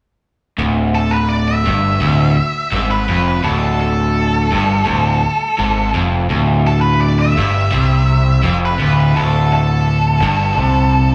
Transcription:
0.59 1.62 D1 medium
0.59 1.65 D2 medium
0.95 1.12 A4 medium
1.11 1.29 B4 medium
1.29 1.47 D5 medium
1.48 2.87 E5 loud
1.66 2.00 G1 medium
1.66 2.00 G2 medium
2.01 2.35 D1 medium
2.01 2.36 D2 medium
2.72 3.06 G#1 medium
2.72 3.07 G#2 medium
2.91 3.26 B4 medium
3.08 3.42 F1 medium
3.08 3.43 F2 loud
3.28 3.44 B4 medium
3.44 4.48 D1 medium
3.44 4.50 D2 loud
3.44 3.79 A4 medium
3.81 5.91 A4 medium
4.51 4.86 G1 medium
4.51 4.85 G2 medium
4.85 5.21 D1 medium
4.85 5.21 D2 loud
5.59 5.93 G#1 medium
5.59 5.94 G#2 medium
5.94 6.28 F1 medium
5.94 6.29 F2 loud
6.30 7.34 D1 medium
6.30 7.36 D2 medium
6.67 6.81 A4 medium
6.81 7.00 B4 medium
7.00 7.19 D5 medium
7.19 8.58 E5 medium
7.37 7.70 G1 medium
7.37 7.71 G2 medium
7.72 8.41 C2 medium
7.72 8.43 C3 medium
8.43 8.78 F1 medium
8.43 8.79 F2 medium
8.65 8.99 B4 medium
8.80 9.14 D1 medium
8.80 9.15 D2 medium
9.00 9.16 B4 medium
9.16 10.19 D1 medium
9.16 10.22 D2 medium
9.16 9.51 A4 medium
9.54 11.15 A4 medium
10.22 10.56 G1 medium
10.22 10.58 G2 medium
10.58 11.15 C2 medium
10.58 11.15 C3 loud

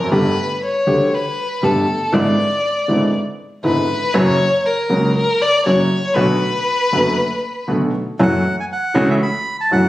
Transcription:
0.00 0.12 A#4 medium
0.05 0.11 F#2 medium
0.11 0.32 G1 medium
0.11 0.33 G1 medium
0.11 0.33 G2 medium
0.11 0.32 D3 medium
0.11 0.33 G3 medium
0.11 0.33 A3 medium
0.11 0.33 G4 medium
0.11 0.59 B4 medium
0.64 1.16 C#5 medium
0.86 1.08 D2 medium
0.86 1.08 D3 medium
0.86 1.08 G3 soft
0.86 1.08 A3 soft
0.86 1.08 G4 medium
1.15 1.65 B4 medium
1.62 1.84 G1 medium
1.62 1.84 G2 medium
1.62 1.84 D3 soft
1.62 1.84 G3 soft
1.62 1.84 A3 soft
1.62 1.84 G4 medium
1.62 2.16 A4 medium
2.13 2.34 G#1 medium
2.13 2.34 G#2 medium
2.13 2.34 D3 medium
2.13 2.34 G#3 medium
2.13 2.34 B3 medium
2.13 2.34 E4 medium
2.13 3.14 D5 medium
2.88 3.10 G#1 medium
2.88 3.10 G#2 medium
2.88 3.09 D3 soft
2.88 3.09 G#3 soft
2.88 3.10 B3 soft
2.88 3.10 E4 medium
3.64 3.85 G#1 medium
3.64 3.85 G#2 medium
3.64 3.85 D3 soft
3.64 3.85 G#3 soft
3.64 3.85 B3 soft
3.64 3.85 E4 medium
3.64 4.16 B4 medium
4.14 4.35 F#1 loud
4.14 4.35 F#2 medium
4.14 4.35 C#3 medium
4.14 4.35 F#3 medium
4.14 4.35 A#3 medium
4.14 4.35 F#4 medium
4.14 4.67 C#5 loud
4.66 5.15 A#4 medium
4.90 5.11 C#2 medium
4.90 5.11 C#3 medium
4.90 5.11 F#3 soft
4.90 5.11 A#3 soft
4.90 5.11 F#4 medium
5.16 5.43 A#4 medium
5.41 5.65 D5 loud
5.65 5.86 F#1 medium
5.65 5.87 F#2 medium
5.65 5.87 C#3 soft
5.65 5.87 F#3 medium
5.65 5.87 A#3 soft
5.65 5.87 F#4 medium
5.65 6.16 C#5 medium
6.14 6.37 B1 loud
6.14 6.37 B1 medium
6.14 6.37 B2 medium
6.14 6.37 D3 medium
6.14 6.37 A3 medium
6.14 6.37 B3 medium
6.14 6.37 F#4 medium
6.14 7.67 B4 loud
6.92 7.13 F#1 medium
6.92 7.14 F#1 medium
6.92 7.14 F#2 medium
6.92 7.13 D3 soft
6.92 7.13 A3 soft
6.92 7.14 B3 soft
6.92 7.14 F#4 medium
7.67 7.89 B1 medium
7.67 7.90 B1 medium
7.67 7.89 B2 medium
7.67 7.89 D3 soft
7.67 7.89 A3 soft
7.67 7.90 B3 soft
7.67 7.90 F#4 medium
8.19 8.41 F#1 loud
8.19 8.41 F#2 medium
8.19 8.40 E3 medium
8.19 8.41 F#3 medium
8.19 8.41 A3 medium
8.19 8.41 C#4 medium
8.19 8.41 F#4 medium
8.19 8.56 F#5 loud
8.60 8.65 G#5 medium
8.72 9.10 F#5 medium
8.94 9.16 C#2 medium
8.94 9.16 C#3 medium
8.94 9.16 E3 medium
8.94 9.16 A3 medium
8.94 9.16 C#4 medium
8.94 9.16 F#4 medium
9.10 9.15 E5 medium
9.23 9.57 B5 loud
9.60 9.71 A5 medium
9.71 9.89 F#1 medium
9.71 9.89 F#2 medium
9.71 9.89 E3 medium
9.71 9.89 F#3 medium
9.71 9.89 A3 soft
9.71 9.89 C#4 soft
9.71 9.89 F#4 medium
9.71 9.89 F#5 loud

